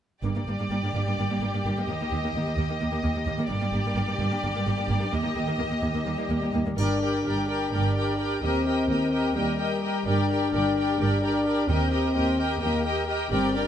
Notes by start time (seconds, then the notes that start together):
0.23 G1 G2 A#3 G4 D5
0.35 G2 A#3
0.47 G1 G2 A#3
0.58 G2 A#3
0.70 G1 G2 A#3
0.83 G2 A#3
0.93 G1 G2 A#3
1.07 G2 A#3
1.16 G1 G2 A#3
1.30 G2 A#3
1.40 G1 G2 A#3
1.53 G2 A#3
1.64 G1 G2 A#3
1.77 G2 A#3
1.87 D#2 A#3 D#5
2.00 D#2 A#3
2.10 D#2 A#3
2.23 D#2 A#3
2.34 D#2 A#3
2.46 D#2 A#3
2.56 D#2 A#3
2.69 D#2 A#3
2.80 D#2 A#3
2.91 D#2 A#3
3.03 D#2 A#3
3.15 D#2 A#3
3.27 D#2 A#3
3.38 D#2 A#3
3.49 G1 G2 A#3 G4 D5
3.61 G2 A#3
3.72 G1 G2 A#3
3.85 G2 A#3
3.95 G1 G2 A#3
4.06 G2 A#3
4.18 G1 G2 A#3
4.30 G2 A#3
4.43 G1 G2 A#3
4.54 G2 A#3
4.66 G1 G2 A#3
4.77 G2 A#3
4.88 G1 G2 A#3
5.00 G2 A#3
5.11 D#2 A#3 D#5
5.23 D#2 A#3
5.35 D#2 A#3
5.46 D#2 A#3
5.58 D#2 A#3
5.70 D#2 A#3
5.81 D#2 A#3
5.93 D#2 A#3
6.05 D#2 G3 A#3
6.17 D#2 A#3
6.29 D#2 A#3
6.41 D#2 A#3
6.52 D#2 A#3
6.65 D#2 A#3
6.77 G1 G2 D4 G4 A#4 D5 G5, triangle
7.02 G4 A#4 D5 G5
7.25 G1 G2 G4 A#4 D5 G5
7.48 G4 A#4 D5 G5
7.73 G1 G2 G4 A#4 D5 G5
7.96 G4 A#4 D5 G5
8.19 G4 A#4 D5 G5
8.42 D#2 C4 G4 A#4 D#5 G5
8.66 G4 A#4 D#5 G5
8.88 D#2 G4 A#4 D#5 G5
9.12 G4 A#4 D#5 G5
9.35 D#2 G3 G4 A#4 D#5 G5
9.59 G4 A#4 D#5 G5
9.82 G4 A#4 D#5 G5
10.06 G1 G2 D4 G4 A#4 D5 G5
10.30 G4 A#4 D5 G5
10.53 G1 G2 G4 A#4 D5 G5
10.77 G4 A#4 D5 G5
10.99 G1 G2 G4 A#4 D5 G5
11.23 G4 A#4 D5 G5
11.46 G4 A#4 D5 G5
11.69 D#2 C4 G4 A#4 D#5 G5
11.92 G4 A#4 D#5 G5
12.15 D#2 G4 A#4 D#5 G5
12.39 G4 A#4 D#5 G5
12.61 D#2 A#3 G4 A#4 D#5 G5
12.85 G4 A#4 D#5 G5
13.08 G4 A#4 D#5 G5
13.31 G1 G2 C4 G4 A#4 D5 G5
13.54 D4 G4 A#4 D5 G5